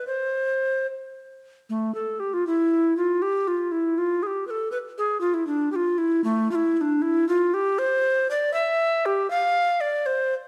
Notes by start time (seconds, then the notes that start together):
0.07 C5
1.70 A3
1.95 A4
2.20 G4
2.34 F4
2.47 E4
2.97 F4
3.22 G4
3.48 F4
3.72 E4
3.98 F4
4.23 G#4
4.27 G4
4.47 A4 B4
4.72 B4
4.98 G#4
5.21 F4
5.34 E4
5.47 D4
5.72 F4 G4
5.98 E4
6.24 A3
6.51 E4 F4
6.77 E4
6.81 D4
7.02 E4
7.29 F4
7.54 G4
7.79 C5
8.31 D5
8.53 E5
9.06 G4
9.30 F5
9.81 D5
10.06 C5